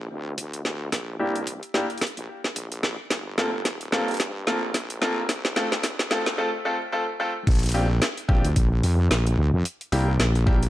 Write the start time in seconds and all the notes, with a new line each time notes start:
0.10 D2
0.38 kick, closed hi-hat
0.53 closed hi-hat
0.65 snare
0.92 A#1, kick, snare, closed hi-hat
1.19 C2 A#3 D4 E4 G4
1.36 closed hi-hat
1.47 kick, closed hi-hat
1.63 closed hi-hat
1.74 A#3 D4 E4 G4, snare
1.90 closed hi-hat
1.98 snare, closed hi-hat
2.01 kick, closed hi-hat
2.17 A#1, closed hi-hat
2.44 snare
2.56 A#1, kick, closed hi-hat
2.72 closed hi-hat
2.83 snare
3.10 G1, kick, snare, closed hi-hat
3.38 A#3 C4 F4 A4, snare
3.65 kick, snare, closed hi-hat
3.81 closed hi-hat
3.92 G2 A#3 C4 F4 A4, snare
4.08 closed hi-hat
4.11 closed hi-hat
4.14 closed hi-hat
4.17 kick, snare, closed hi-hat
4.20 closed hi-hat
4.47 A#1 A#3 C4 F4 A4, snare
4.74 kick, snare, closed hi-hat
4.90 closed hi-hat
5.01 A#3 C4 F4 A4, snare
5.29 C2, kick, snare, closed hi-hat
5.45 snare
5.56 D2 A3 C4 F4 A4, snare
5.72 snare, closed hi-hat
5.83 kick, snare, closed hi-hat
5.99 D2, snare, closed hi-hat
6.11 A3 C4 F4 A4, snare
6.26 snare
6.38 A3 C4 F4 A4
6.65 A3 C4 F4 A4
6.92 A3 C4 F4 A4
7.20 A3 C4 F4 A4
7.47 A#1, kick, closed hi-hat, crash
7.51 closed hi-hat
7.55 closed hi-hat
7.59 closed hi-hat
7.63 closed hi-hat
7.66 closed hi-hat
7.69 closed hi-hat
7.72 C4 D4 F4 G4, closed hi-hat
8.02 snare, closed hi-hat
8.18 closed hi-hat
8.29 A#1 C4 D4 F4 G4, kick
8.45 D2, closed hi-hat
8.56 A#1, kick, closed hi-hat
8.83 F2, open hi-hat
9.11 A#1, snare, closed hi-hat
9.27 closed hi-hat
9.38 D2
9.53 F2
9.65 closed hi-hat
9.81 closed hi-hat
9.92 C2 A#3 D4 E4 G4, open hi-hat
10.19 A#1, snare, closed hi-hat
10.35 closed hi-hat
10.46 A#3 D4 E4 G4, kick, snare
10.63 closed hi-hat